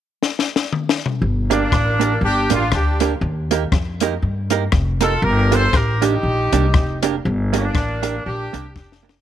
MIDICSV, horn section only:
0, 0, Header, 1, 2, 480
1, 0, Start_track
1, 0, Key_signature, -2, "minor"
1, 0, Tempo, 502092
1, 1164, Time_signature, 4, 2, 24, 8
1, 8807, End_track
2, 0, Start_track
2, 0, Title_t, "Horn section"
2, 0, Program_c, 0, 61
2, 1454, Note_on_c, 0, 62, 91
2, 1457, Note_on_c, 0, 58, 69
2, 2092, Note_off_c, 0, 62, 0
2, 2093, Note_off_c, 0, 58, 0
2, 2142, Note_on_c, 0, 62, 77
2, 2154, Note_on_c, 0, 67, 99
2, 2386, Note_off_c, 0, 62, 0
2, 2393, Note_off_c, 0, 67, 0
2, 2414, Note_on_c, 0, 62, 75
2, 2426, Note_on_c, 0, 65, 99
2, 2597, Note_off_c, 0, 62, 0
2, 2603, Note_off_c, 0, 65, 0
2, 2615, Note_on_c, 0, 62, 69
2, 2624, Note_on_c, 0, 67, 80
2, 2959, Note_off_c, 0, 62, 0
2, 2963, Note_off_c, 0, 67, 0
2, 4797, Note_on_c, 0, 69, 94
2, 4809, Note_on_c, 0, 65, 69
2, 4988, Note_off_c, 0, 69, 0
2, 4995, Note_off_c, 0, 65, 0
2, 5006, Note_on_c, 0, 70, 100
2, 5015, Note_on_c, 0, 67, 77
2, 5278, Note_off_c, 0, 70, 0
2, 5282, Note_off_c, 0, 67, 0
2, 5289, Note_on_c, 0, 72, 106
2, 5300, Note_on_c, 0, 69, 85
2, 5489, Note_off_c, 0, 72, 0
2, 5494, Note_off_c, 0, 69, 0
2, 5504, Note_on_c, 0, 70, 99
2, 5509, Note_on_c, 0, 67, 71
2, 5767, Note_off_c, 0, 67, 0
2, 5767, Note_off_c, 0, 70, 0
2, 5779, Note_on_c, 0, 67, 86
2, 5785, Note_on_c, 0, 63, 66
2, 6691, Note_off_c, 0, 67, 0
2, 6694, Note_off_c, 0, 63, 0
2, 7219, Note_on_c, 0, 58, 68
2, 7223, Note_on_c, 0, 62, 88
2, 7859, Note_off_c, 0, 58, 0
2, 7861, Note_off_c, 0, 62, 0
2, 7898, Note_on_c, 0, 67, 107
2, 7899, Note_on_c, 0, 62, 81
2, 8366, Note_off_c, 0, 67, 0
2, 8367, Note_off_c, 0, 62, 0
2, 8378, Note_on_c, 0, 67, 85
2, 8379, Note_on_c, 0, 62, 67
2, 8724, Note_off_c, 0, 67, 0
2, 8725, Note_off_c, 0, 62, 0
2, 8807, End_track
0, 0, End_of_file